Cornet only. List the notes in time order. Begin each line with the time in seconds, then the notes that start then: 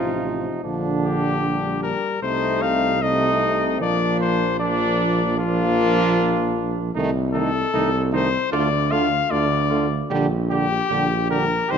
Already playing: F4
1.04 G4
1.83 A#4
2.22 C5
2.62 F5
3.02 D#5
3.82 D5
4.20 C5
4.60 D5
5.39 F4
7.33 A4
8.14 C5
8.53 D5
8.91 F5
9.31 D5
10.51 G4
11.31 A#4
11.71 C5